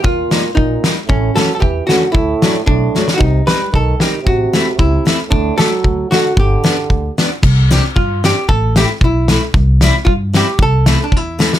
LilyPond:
<<
  \new Staff \with { instrumentName = "Hollow-body jazz guitar" } { \time 2/4 \key d \mixolydian \tempo 4 = 114 f'4 ees'8. r16 | cis'8 a'16. a'32 g'8 fis'8 | e'4 d'8. r32 fis'32 | ees'8 b'8 a'8 g'8 |
fis'4 e'8. r16 | d'8 a'4 fis'8 | g'4. r8 | \key c \major r4 f'8 g'8 |
a'8 g'8 e'8. r16 | r4 f'8 g'8 | a'8. d'16 e'4 | }
  \new Staff \with { instrumentName = "Steel-string acoustic guitar" } { \time 2/4 \key d \mixolydian r8 <g bes ees'>8 r8 <g bes ees'>8 | r8 <e a cis'>8 r8 <e a cis'>8 | r8 <fis a d'>8 r8 <fis a d'>8 | r8 <g c' ees'>8 r8 <g c' ees'>8 |
r8 <a c' e'>8 r8 <a c' e'>8 | r8 <a d' g'>8 r8 <a d' fis'>8 | r8 <b d' g'>8 r8 <b d' g'>8 | \key c \major r8 <c' d' g'>8 r8 <c' d' g'>8 |
r8 <a c' e'>8 r8 <a c' e'>8 | r8 <g c' e'>8 r8 <g c' e'>8 | r8 <a c' e'>8 r8 <a c' e'>8 | }
  \new Staff \with { instrumentName = "Euphonium" } { \clef bass \time 2/4 \key d \mixolydian bes,4 bes,8. r16 | a,8 fis16. fis32 e8 d8 | a,4 a,8. r32 d32 | c8 g8 ees8 ees8 |
c4 c8. r16 | a,8 fis4 d8 | d4. r8 | \key c \major r2 |
r2 | r2 | r2 | }
  \new Staff \with { instrumentName = "Upright bass" } { \clef bass \time 2/4 \key d \mixolydian ees,8 r8 bes,,8 r8 | a,,8 r8 e,8 r8 | d,8 r8 b,,8 r8 | c,8 r8 b,,8 r8 |
a,,8 r8 cis,8 r8 | d,8 r8 d,8 r8 | g,,8 r8 d,8 r8 | \key c \major c,4 g,4 |
a,,4 b,,4 | c,4 g,4 | c,4 e,4 | }
  \new DrumStaff \with { instrumentName = "Drums" } \drummode { \time 2/4 bd8 sn8 bd8 sn8 | bd8 sn8 bd8 sn8 | bd8 sn8 bd8 sn16 sn16 | bd8 sn8 bd8 sn8 |
bd8 sn8 bd8 sn8 | bd8 sn8 bd8 sn8 | bd8 sn8 bd8 sn8 | <cymc bd>8 <hhp sn>8 bd8 <hhp sn>8 |
bd8 <hhp sn>8 bd8 <hhp sn>8 | bd8 <hhp sn>8 bd8 <hhp sn>8 | bd8 <hhp sn>8 bd8 <hhp sn>16 sn16 | }
>>